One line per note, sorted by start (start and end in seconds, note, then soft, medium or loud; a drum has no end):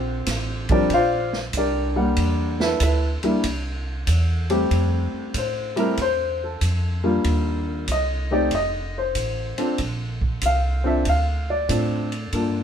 0.00 0.25 A#1 medium
0.00 0.68 C4 medium
0.00 0.68 F4 medium
0.00 0.68 G4 medium
0.00 0.67 C5 medium
0.26 0.88 A1 medium
0.26 kick soft
0.26 snare soft
0.26 hi-hat pedal medium
0.26 ride medium
0.69 0.88 F3 medium
0.69 0.89 G3 medium
0.69 0.89 C4 medium
0.69 0.89 D4 medium
0.69 0.91 G4 medium
0.69 0.91 A#4 medium
0.69 0.91 D5 medium
0.69 kick medium
0.69 ride soft
0.90 1.52 A#1 medium
0.90 kick soft
0.90 ride medium
0.94 1.34 F4 medium
0.94 1.34 C5 medium
0.94 1.34 D5 medium
0.94 1.34 F5 loud
1.33 snare soft
1.53 2.15 C2 medium
1.53 kick soft
1.53 hi-hat pedal medium
1.53 ride medium
1.57 1.96 D4 medium
1.57 2.58 G4 medium
1.57 2.15 A#4 medium
1.57 2.58 D5 medium
1.96 2.76 G3 medium
1.96 2.76 A#3 medium
1.96 2.77 D4 medium
1.96 2.77 F#5 medium
2.16 2.79 E2 medium
2.16 kick soft
2.16 ride medium
2.60 2.81 E4 medium
2.60 2.81 A4 medium
2.60 2.81 B4 medium
2.60 2.80 E5 medium
2.60 snare soft
2.80 3.20 D2 medium
2.80 3.08 E4 medium
2.80 3.08 A4 medium
2.80 3.08 B4 medium
2.80 3.08 E5 medium
2.80 kick soft
2.80 hi-hat pedal medium
2.80 ride medium
3.23 3.42 G3 medium
3.23 3.42 A#3 medium
3.23 3.42 D4 medium
3.23 3.43 E4 medium
3.23 muted upright bass stroke soft
3.23 ride soft
3.44 4.06 C2 medium
3.44 kick soft
3.44 ride medium
4.07 4.69 E2 medium
4.07 kick soft
4.07 hi-hat pedal medium
4.07 ride medium
4.50 5.30 G3 medium
4.50 5.30 A3 medium
4.50 5.30 C4 medium
4.50 5.30 G4 medium
4.50 ride soft
4.71 5.11 F2 medium
4.71 kick soft
4.71 ride medium
5.13 muted upright bass stroke soft
5.34 5.96 A2 medium
5.34 5.78 C5 medium
5.34 kick soft
5.34 hi-hat pedal medium
5.34 ride medium
5.76 5.95 G3 medium
5.76 5.95 A3 medium
5.76 5.96 C4 medium
5.76 5.96 E4 medium
5.76 5.98 A#4 medium
5.76 ride soft
5.97 6.59 E2 medium
5.97 kick soft
5.97 ride medium
6.02 6.41 C5 medium
6.44 7.22 A4 medium
6.61 7.23 F2 medium
6.61 kick soft
6.61 hi-hat pedal soft
6.61 ride medium
7.04 7.84 G3 medium
7.04 7.84 A#3 medium
7.04 7.84 D4 medium
7.04 7.85 F4 medium
7.24 7.86 D#2 medium
7.24 kick soft
7.24 ride medium
7.88 8.50 C2 medium
7.88 kick soft
7.88 hi-hat pedal soft
7.88 ride medium
7.92 8.32 D#5 medium
8.31 8.50 A3 medium
8.31 8.50 C4 medium
8.31 8.50 D#4 medium
8.31 8.50 G4 medium
8.31 8.52 D5 medium
8.51 9.13 F1 medium
8.51 kick soft
8.51 ride medium
8.55 8.95 D#5 medium
8.98 9.77 C5 medium
9.15 9.55 A1 medium
9.15 kick soft
9.15 hi-hat pedal medium
9.15 ride medium
9.58 9.77 C4 medium
9.58 9.77 D4 medium
9.58 9.77 F4 medium
9.58 9.77 A4 medium
9.58 ride soft
9.78 10.40 A#1 medium
9.78 kick soft
9.78 ride medium
10.21 kick soft
10.41 11.04 C2 medium
10.41 kick soft
10.41 hi-hat pedal medium
10.41 ride medium
10.46 10.86 F5 medium
10.84 11.03 C4 medium
10.84 11.03 D4 medium
10.84 11.04 F4 medium
10.84 11.04 A4 medium
10.84 11.06 E5 medium
11.05 11.68 D2 medium
11.05 kick soft
11.05 ride medium
11.09 11.49 F5 medium
11.50 12.30 D5 medium
11.69 12.31 A2 medium
11.69 12.08 C4 medium
11.69 12.08 D4 soft
11.69 12.08 F4 soft
11.69 12.08 A4 medium
11.69 kick soft
11.69 hi-hat pedal medium
11.69 ride medium
12.12 ride soft
12.32 12.63 G2 medium
12.32 12.63 A#3 medium
12.32 12.63 D4 medium
12.32 12.63 F4 medium
12.32 12.63 A4 medium
12.32 kick soft
12.32 ride medium